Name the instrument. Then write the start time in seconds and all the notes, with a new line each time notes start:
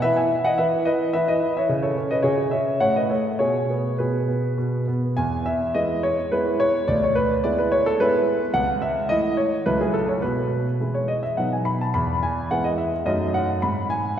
grand piano
0.02 E3 B4 E5
0.16 E5 G#5
0.30 E4
0.44 D#5 F#5
0.58 E3 B4 E5
0.85 E4 B4 D#5
1.13 E3 B4 E5
1.28 B4 D#5
1.42 E4
1.57 C#5 E5
1.69 C#3
1.83 A4 C#5
1.97 C#4
2.11 B4 D#5
2.23 C#3 G#4 C#5
2.51 C#4 C#5 E5
2.80 A2 C#5 F#5
2.96 B4 D#5
3.10 A3 A4 C#5
3.39 B2 G#4 C#5
3.70 B3
3.98 B2 G#4 B4
4.28 B3
4.58 B2
4.88 B3
5.17 E2 G#5
5.46 E5
5.75 G#3 B3 E4 D#5
6.03 C#5
6.32 G#3 B3 E4 B4
6.60 C#5
6.88 D2 D5
7.04 C#5
7.15 B4
7.44 G#3 B3 E4 D5
7.59 B4
7.72 C#5
7.86 A4
8.00 G#3 B3 E4 B4
8.54 C#2 F#5
8.82 E5
9.09 E3 A3 E4 D#5
9.37 C#5
9.66 C#2 F#3 A3 E4 B4
9.81 G#4
9.94 A4
10.08 C#5
10.22 B2 B4
10.80 E3 G#3 E4
10.94 C#5
11.08 D#5
11.23 E5
11.37 B2 F#3 B3 D#4 F#5
11.53 G#5
11.65 B5
11.81 A5
11.94 E2 B5
12.23 G#5
12.51 G#3 B3 E4 F#5
12.64 D#5
12.78 E5
13.06 F#2 F#3 A3 D#4 D#5
13.34 F#5
13.62 G#2 B5
13.90 G#5